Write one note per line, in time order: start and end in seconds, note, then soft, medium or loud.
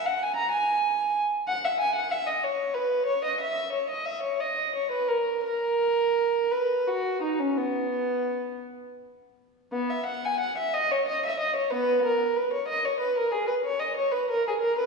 0.06 0.20 F#5 medium
0.23 0.37 G#5 medium
0.36 0.51 A#5 medium
0.52 1.14 G#5 medium
1.48 1.63 F#5 medium
1.64 1.80 E5 medium
1.80 1.96 G#5 medium
1.95 2.11 F#5 medium
2.11 2.27 E5 medium
2.27 2.43 D#5 medium
2.43 2.76 C#5 medium
2.74 3.08 B4 medium
3.06 3.23 C#5 medium
3.24 3.41 D#5 medium
3.40 3.73 E5 medium
3.73 3.90 C#5 medium
3.90 4.07 D#5 medium
4.05 4.23 E5 medium
4.23 4.40 C#5 medium
4.40 4.75 D#5 medium
4.75 4.92 C#5 medium
4.91 5.09 B4 medium
5.08 5.43 A#4 medium
5.44 6.49 A#4 medium
6.51 6.87 B4 medium
6.88 7.23 F#4 medium
7.22 7.40 D#4 soft
7.39 7.57 C#4 soft
7.57 8.61 B3 medium
9.72 9.90 B3 medium
9.90 10.08 E5 medium
10.06 10.24 F#5 medium
10.25 10.42 G#5 medium
10.40 10.57 F#5 medium
10.58 10.74 E5 medium
10.74 10.90 D#5 medium
10.91 11.07 C#5 medium
11.08 11.23 D#5 medium
11.26 11.40 E5 medium
11.40 11.55 D#5 medium
11.56 11.71 C#5 medium
11.71 12.02 B3 medium
11.71 12.04 B4 medium
12.05 12.37 A#4 medium
12.37 12.53 B4 medium
12.53 12.69 C#5 medium
12.68 12.84 D#5 medium
12.85 13.01 C#5 medium
13.00 13.17 B4 medium
13.18 13.34 A#4 medium
13.32 13.49 G#4 medium
13.47 13.54 B4 medium
13.65 13.81 C#5 medium
13.80 13.97 D#5 medium
13.97 14.13 C#5 medium
14.12 14.29 B4 medium
14.30 14.46 A#4 medium
14.47 14.54 G#4 medium
14.61 14.78 A#4 medium
14.79 14.86 B4 medium